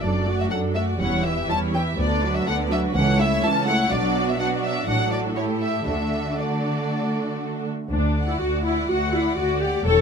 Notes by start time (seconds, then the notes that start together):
0.00 F#1 F#2 F#3 D4 A4 D5
0.26 A3 F#4 D5
0.40 E5
0.50 F#2 F#3 D4 A4 F#5
0.74 A3 F#4 D5 E5
0.99 E1 E2 G3 C#4 E4 C#5 F#5
1.24 E3 E4 G4 E5
1.48 E2 G3 C#4 E4 C#5 A5
1.74 E3 E4 G4 E5 G5
1.97 D2 D3 B3 D4 D5
2.23 F#3 D4 F#4 B4
2.35 E5
2.46 D2 D3 B3 D4 D5 F#5
2.71 F#3 D4 F#4 B4 E5
2.95 C#2 E3 C#4 A4 F#5
3.19 A3 E4 C#5 E5
3.43 C#2 E3 C#4 A4 A5
3.67 A3 E4 C#5 F#5
3.91 B1 B2 F#3 D4 F#4 D5
4.29 E5
4.39 F#3 D4 F#4 D5 F#5
4.64 E5
4.87 A1 A2 F#3 D4 F#4 A4 F#5
5.12 D5
5.36 A3 E4 G4 A4 C#5
5.61 E5
5.86 D2 D3 A3 D4 F#4 A4 E5
6.38 A3 D4 F#4 A4 D5
7.90 D2 D4
8.16 D5 F#5
8.28 E4
8.40 D2 F#4
8.64 E4 D5 F#5
8.88 D2 F#4 F#5
9.13 E4 D5 F#5
9.37 D2 F#4 D5
9.61 G4 D5 F#5
9.85 E1 E2 A4 C#5 G5